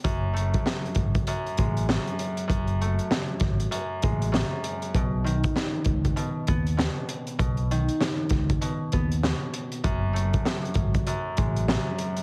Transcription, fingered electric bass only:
X:1
M:4/4
L:1/16
Q:"Swing 16ths" 1/4=98
K:F#dor
V:1 name="Fingered electric bass" clef=bass
F,,,4 z2 G,,,2 z2 A,,,3 z3 | F,,,4 z2 G,,,2 z2 A,,,3 z3 | B,,,4 z2 C,,2 z2 D,,3 z3 | B,,,4 z2 C,,2 z2 D,,3 z3 |
F,,,4 z2 G,,,2 z2 A,,,3 z3 |]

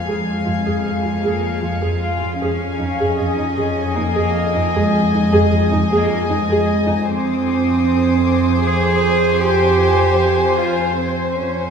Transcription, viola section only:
X:1
M:3/4
L:1/16
Q:1/4=77
K:Fm
V:1 name="Viola section"
A z F A A F A z F A z F | A z E A A E A z E A z E | A z E A A E A z E A z E | c12- |
c12 |]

